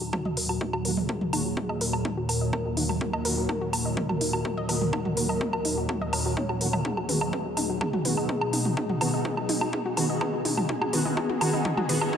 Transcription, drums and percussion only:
0.13 kick, mid tom, low woodblock
0.25 mid tom
0.37 open hi-hat
0.49 low woodblock
0.61 kick, mid tom
0.73 low woodblock
0.85 open hi-hat
0.97 mid tom
1.09 kick, mid tom, low woodblock
1.21 mid tom
1.33 open hi-hat, low woodblock
1.57 kick, mid tom
1.69 low woodblock
1.81 open hi-hat
1.93 low woodblock
2.05 kick, mid tom
2.29 open hi-hat, low woodblock
2.53 kick, mid tom, low woodblock
2.77 open hi-hat
2.89 mid tom, low woodblock
3.01 kick, mid tom
3.13 low woodblock
3.25 open hi-hat
3.49 kick, mid tom, low woodblock
3.73 open hi-hat, low woodblock
3.97 kick, mid tom
4.09 mid tom, low woodblock
4.21 open hi-hat
4.33 low woodblock
4.45 kick, mid tom
4.69 open hi-hat, low woodblock
4.81 mid tom
4.93 kick, mid tom, low woodblock
5.05 mid tom
5.17 open hi-hat
5.29 low woodblock
5.41 kick, mid tom
5.53 low woodblock
5.65 open hi-hat
5.89 kick, mid tom, low woodblock
6.13 open hi-hat, low woodblock
6.37 kick, mid tom
6.49 low woodblock
6.61 open hi-hat
6.73 mid tom, low woodblock
6.85 kick, mid tom
6.97 low woodblock
7.09 open hi-hat, mid tom
7.21 low woodblock
7.33 kick, mid tom
7.57 open hi-hat, mid tom, low woodblock
7.81 kick, mid tom, low woodblock
7.93 mid tom
8.05 open hi-hat, mid tom
8.17 low woodblock
8.29 kick, mid tom
8.41 low woodblock
8.53 open hi-hat, mid tom
8.65 mid tom
8.77 kick, mid tom, low woodblock
8.89 mid tom
9.01 open hi-hat, mid tom, low woodblock
9.25 kick, mid tom
9.37 low woodblock
9.49 open hi-hat, mid tom
9.61 low woodblock
9.73 kick, mid tom
9.97 open hi-hat, mid tom, low woodblock
10.21 kick, mid tom, low woodblock
10.45 open hi-hat, mid tom
10.58 mid tom, low woodblock
10.69 kick, mid tom
10.82 mid tom, low woodblock
10.93 open hi-hat, mid tom
11.05 mid tom
11.17 kick, mid tom, low woodblock
11.30 mid tom
11.41 open hi-hat, mid tom, low woodblock
11.53 mid tom
11.65 kick, mid tom
11.77 mid tom, low woodblock
11.89 open hi-hat, mid tom
12.01 mid tom, low woodblock
12.13 kick, mid tom

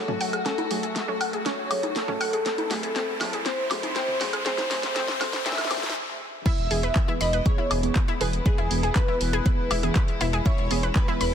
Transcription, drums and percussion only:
0.08 mid tom
0.21 open hi-hat
0.33 closed hi-hat, high woodblock
0.46 snare, closed hi-hat
0.58 closed hi-hat, high conga
0.71 open hi-hat
0.83 closed hi-hat
0.96 snare, closed hi-hat
1.21 open hi-hat, high woodblock
1.33 closed hi-hat
1.46 snare, closed hi-hat
1.71 open hi-hat, high woodblock
1.83 closed hi-hat, high conga
1.96 snare, closed hi-hat
2.08 mid tom
2.21 open hi-hat, high woodblock
2.33 closed hi-hat
2.46 snare, closed hi-hat
2.58 closed hi-hat, high conga
2.71 snare, open hi-hat
2.83 closed hi-hat
2.96 snare, closed hi-hat
3.21 snare, open hi-hat, high woodblock
3.33 closed hi-hat
3.46 snare, closed hi-hat
3.71 snare, open hi-hat, high woodblock
3.83 closed hi-hat, high conga
3.96 snare, closed hi-hat
4.08 mid tom
4.21 snare, open hi-hat
4.33 closed hi-hat, high woodblock
4.46 snare, closed hi-hat
4.58 snare, closed hi-hat, high conga
4.71 snare, open hi-hat
4.83 snare, closed hi-hat
4.96 snare, closed hi-hat
5.08 snare
5.21 snare, open hi-hat, high woodblock
5.33 snare, closed hi-hat
5.46 snare, closed hi-hat
5.52 snare
5.58 snare, closed hi-hat, high woodblock
5.64 snare
5.71 snare, open hi-hat, high woodblock
5.77 snare
5.83 snare, closed hi-hat, high conga
5.89 snare
6.46 kick, closed hi-hat, crash
6.58 closed hi-hat
6.71 open hi-hat
6.83 closed hi-hat
6.96 kick, clap, closed hi-hat
7.21 open hi-hat
7.33 closed hi-hat
7.46 kick, closed hi-hat
7.71 open hi-hat, high woodblock
7.83 closed hi-hat
7.96 kick, clap, closed hi-hat
8.08 closed hi-hat
8.21 open hi-hat
8.33 closed hi-hat
8.46 kick, closed hi-hat
8.58 closed hi-hat
8.71 open hi-hat
8.83 closed hi-hat
8.96 kick, clap, closed hi-hat
9.21 open hi-hat
9.33 closed hi-hat
9.46 kick, closed hi-hat
9.71 open hi-hat, high woodblock
9.83 closed hi-hat
9.96 kick, clap, closed hi-hat
10.08 closed hi-hat
10.21 open hi-hat
10.33 closed hi-hat
10.46 kick, closed hi-hat
10.58 closed hi-hat
10.71 open hi-hat
10.83 closed hi-hat
10.96 kick, clap, closed hi-hat
11.21 open hi-hat

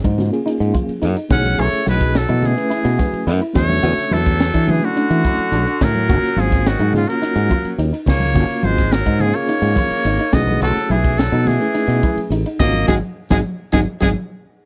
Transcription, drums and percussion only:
0.04 kick, ride, high conga
0.18 snare, hi-hat pedal, low conga
0.33 ride
0.47 hi-hat pedal, ride
0.62 ride
0.74 kick, hi-hat pedal, high conga
0.89 ride
1.02 hi-hat pedal, ride
1.16 ride
1.30 kick, snare, hi-hat pedal, low conga
1.45 snare, ride, high conga
1.59 hi-hat pedal, ride, low conga
1.73 ride
1.86 snare, hi-hat pedal, high conga
2.01 kick, ride
2.15 snare, hi-hat pedal, ride
2.29 ride, high conga
2.42 hi-hat pedal, low conga
2.58 ride
2.71 hi-hat pedal, ride
2.86 ride
2.99 kick, snare, hi-hat pedal, high conga
3.13 ride
3.27 hi-hat pedal, ride
3.42 ride
3.55 kick, snare, hi-hat pedal, low conga
3.70 snare, ride, high conga
3.84 hi-hat pedal, ride, low conga
3.98 snare, ride
4.11 snare, hi-hat pedal, high conga, low conga
4.26 kick, ride
4.40 snare, hi-hat pedal, ride
4.54 kick, ride
4.68 snare, hi-hat pedal, high conga, low conga
4.82 ride
4.96 hi-hat pedal, ride
5.11 ride
5.24 kick, snare, hi-hat pedal, high conga
5.39 ride
5.53 hi-hat pedal, ride
5.67 ride
5.81 kick, snare, hi-hat pedal, low conga
5.95 snare, ride, high conga
6.09 kick, hi-hat pedal, ride, low conga
6.24 snare, ride
6.37 snare, hi-hat pedal, high conga
6.52 kick, snare, ride
6.66 snare, hi-hat pedal, ride
6.79 ride, high conga
6.93 snare, hi-hat pedal, low conga
7.10 ride
7.23 hi-hat pedal, ride
7.37 ride
7.49 kick, hi-hat pedal, high conga
7.65 ride
7.79 hi-hat pedal, ride
7.94 ride
8.06 kick, snare, hi-hat pedal, low conga
8.20 snare, ride, high conga
8.34 kick, hi-hat pedal, ride, low conga
8.51 ride
8.63 hi-hat pedal, high conga
8.78 kick, snare, ride
8.92 snare, hi-hat pedal, ride
9.06 kick, ride
9.19 hi-hat pedal, low conga
9.35 ride
9.49 hi-hat pedal, ride
9.63 ride
9.76 kick, hi-hat pedal, high conga
9.91 ride
10.05 hi-hat pedal, ride
10.19 ride
10.32 kick, snare, hi-hat pedal, low conga
10.47 snare, ride, high conga
10.61 hi-hat pedal, ride, low conga
10.76 snare, ride
10.90 hi-hat pedal, high conga
11.04 kick, ride
11.19 snare, hi-hat pedal, ride
11.33 ride, high conga
11.47 snare, hi-hat pedal, low conga
11.62 ride
11.75 hi-hat pedal, ride
11.89 ride
12.03 kick, hi-hat pedal, high conga
12.18 ride
12.31 hi-hat pedal, ride
12.46 ride
12.60 kick, snare, hi-hat pedal, low conga
12.74 snare, ride, high conga
12.88 kick, snare, high conga
13.31 kick, snare, high conga
13.73 kick, snare, high conga
14.02 kick, snare, high conga

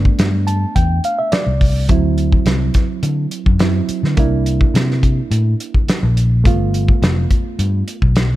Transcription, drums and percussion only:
0.05 kick
0.19 snare, closed hi-hat
0.48 closed hi-hat
0.76 kick, closed hi-hat
1.04 closed hi-hat
1.32 snare, closed hi-hat
1.61 kick, open hi-hat
1.89 kick, closed hi-hat
2.18 closed hi-hat
2.32 kick
2.46 snare, closed hi-hat
2.74 kick, snare, closed hi-hat
3.03 closed hi-hat
3.31 closed hi-hat
3.46 kick
3.59 snare, closed hi-hat
3.89 closed hi-hat
4.05 snare
4.17 kick, closed hi-hat
4.46 closed hi-hat
4.61 kick
4.75 snare, closed hi-hat
4.91 snare
5.03 kick, closed hi-hat
5.32 closed hi-hat
5.60 closed hi-hat
5.74 kick
5.89 snare, closed hi-hat
6.17 closed hi-hat
6.45 kick, closed hi-hat
6.74 closed hi-hat
6.88 kick
7.03 snare, closed hi-hat
7.31 kick, closed hi-hat
7.59 closed hi-hat
7.88 closed hi-hat
8.02 kick
8.16 snare, closed hi-hat

